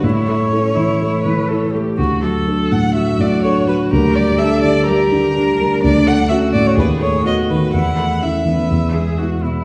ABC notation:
X:1
M:4/4
L:1/16
Q:1/4=124
K:Glyd
V:1 name="Violin"
c12- c2 z2 | F2 A4 f2 e2 d2 c2 B2 | _B2 d2 e2 d2 B8 | [K:A] d2 f2 e2 d c B2 c2 ^d2 B2 |
f4 e8 z4 |]
V:2 name="Cello"
E4 C2 E4 B2 A2 G2 | z8 F8 | G4 A4 G4 D4- | [K:A] D4 F4 G4 F4 |
E4 A,2 B,4 G2 F2 E2 |]
V:3 name="Grand piano"
A,,2 A,2 [EA]2 E,2 A,2 E,2 [EA]2 A,2 | D,,2 F,2 [DA]2 A,,2 F,2 A,,2 [DA]2 F,2 | D,,2 G,2 [DG]2 D,2 G,2 D,2 [DG]2 G,2 | [K:A] D,,2 A,2 [CF]2 A,,2 ^D,,2 A,2 [B,F]2 ^D,2 |
E,,2 A,2 [CE]2 E,2 E,,2 G,2 [B,E]2 B,,2 |]